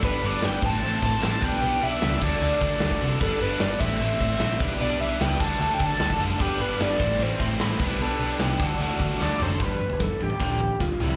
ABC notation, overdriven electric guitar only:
X:1
M:4/4
L:1/8
Q:1/4=150
K:G
V:1 name="Overdriven electric guitar"
[G,B,DB] [G,B,DB] [G,B,DB] [A,,A,CEc] [A,,A,CEc] [A,,A,CEc] [A,,A,CEc] [B,DGB] | [B,DGB] [B,DGB] [B,DGB] [D,DFA] [D,DFA] [D,DFA] [D,DFA] [D,DFA] | [G,B,DB] [G,B,DB] [G,B,DB] [A,,A,CEc] [A,,A,CEc] [A,,A,CEc] [A,,A,CEc] [B,DGB] | [B,DGB] [B,DGB] [B,DGB] [D,DFA] [D,DFA] [D,DFA] [D,DFA] [D,DFA] |
[G,B,DB] [G,B,DB] [G,B,DB] [A,,A,CEc] [A,,A,CEc] [A,,A,CEc] [A,,A,CEc] [B,DGB] | [B,DGB] [B,DGB] [B,DGB] [D,DFA] [D,DFA] [D,DFA] [D,DFA] [D,DFA] | [G,,D,G,] [G,,D,] [G,,D,] [G,,D,] [_B,,D,_B,] [B,,D,] [B,,D,] [C,E,G,] |]